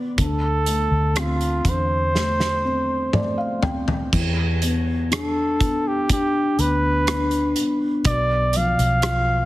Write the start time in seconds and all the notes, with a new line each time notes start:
Already playing: B3
0.18 D2 D3, kick, closed hi-hat
0.22 A4
0.66 A3, closed hi-hat
0.91 D2
1.16 C4 F4, cross-stick, closed hi-hat
1.41 closed hi-hat
1.65 E2 D3, kick, closed hi-hat
1.69 C5
2.14 A3, snare
2.40 snare
2.64 C4
3.13 A3 D5, mid tom
3.38 F5
3.63 C4 G5, floor tom
3.88 floor tom
4.13 E2 E3, kick, crash
4.62 B3, closed hi-hat
5.11 D4 A4, cross-stick, closed hi-hat
5.60 B3, kick, closed hi-hat
5.87 G4
6.09 D4 G4, kick, closed hi-hat
6.59 D2 B3 B4, closed hi-hat
7.07 D4, cross-stick, closed hi-hat
7.31 closed hi-hat
7.56 B3, closed hi-hat
8.05 B1 B2 D5, kick, closed hi-hat
8.53 F3 F5, closed hi-hat
8.79 B1, closed hi-hat
9.02 F4, cross-stick, closed hi-hat